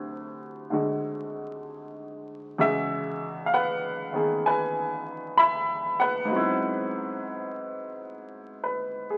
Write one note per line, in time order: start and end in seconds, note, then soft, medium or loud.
0.00 2.55 D2 soft
0.00 2.56 C3 soft
0.00 2.58 F#3 soft
0.00 2.60 E4 medium
0.00 2.59 G#4 soft
0.70 2.57 D3 soft
0.70 2.57 G#3 soft
0.70 2.58 F#4 soft
2.58 6.31 E2 medium
2.58 6.31 C#3 medium
2.58 6.31 G#3 soft
2.58 6.31 F#4 medium
2.58 3.43 G#4 medium
2.58 3.50 E5 medium
3.46 3.51 F5 medium
3.54 4.42 B4 medium
3.54 4.48 F#5 medium
4.13 6.30 D#3 soft
4.13 6.29 B3 soft
4.13 6.32 G#4 soft
4.46 5.35 B4 medium
4.46 5.41 G#5 medium
5.37 5.97 E5 medium
5.37 6.02 B5 medium
6.00 8.62 B4 medium
6.00 9.06 F#5 medium
6.25 9.18 G#2 medium
6.25 9.18 F#3 soft
6.31 9.18 B3 medium
6.31 9.18 C4 medium
6.36 9.18 E4 medium
8.64 9.18 B4 soft
9.10 9.18 G#4 soft